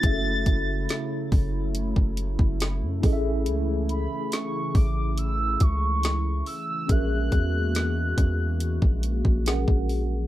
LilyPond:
<<
  \new Staff \with { instrumentName = "Soft synth lead" } { \time 4/4 \key fis \minor \tempo 4 = 70 a'''4.~ a'''16 r2 r16 | r8 b''8 cis'''8 d'''8 e'''8 cis'''4 e'''8 | fis'''2. r4 | }
  \new Staff \with { instrumentName = "Tine electric piano" } { \time 4/4 \key fis \minor <cis' e' fis' gis' a' e''>2.~ <cis' e' fis' gis' a' e''>8 <cis' e' gis' a' dis'' e''>8~ | <cis' e' gis' a' dis'' e''>2.~ <cis' e' gis' a' dis'' e''>8 r8 | <cis' fis' gis' ais' e''>2. <cis' fis' gis' ais' fis''>4 | }
  \new Staff \with { instrumentName = "Analog synth pad" } { \clef bass \time 4/4 \key fis \minor << { e'1~ | e'1 | <ais fis'>1 | } \\ { <cis fis a>2.~ <cis fis a>8 <cis e>8~ | <cis e>1 | <e gis>1 | } >> }
  \new Staff \with { instrumentName = "808-style bass" } { \clef bass \time 4/4 \key fis \minor fis,,8 fis,,8 r8 fis,,8. fis,,8 fis,,8 fis,16 a,,8 | cis,8. r8. a,,4 cis,4 r8 | ais,,8 e,4 e,8. ais,,8 ais,,8 ais,,8. | }
  \new DrumStaff \with { instrumentName = "Drums" } \drummode { \time 4/4 <hh bd>8 <hh bd>8 <hh sn>8 <hho bd>8 hh16 bd16 hh16 bd16 <hh sn>8 <hho bd>8 | hh8 hh8 <hh sn>8 <hho bd>8 hh8 <hh bd>8 <hh sn>8 hho8 | <hh bd>8 <hh bd>8 <hh sn>8 <hh bd>8 hh16 bd16 hh16 bd16 <hh sn>16 bd16 hho8 | }
>>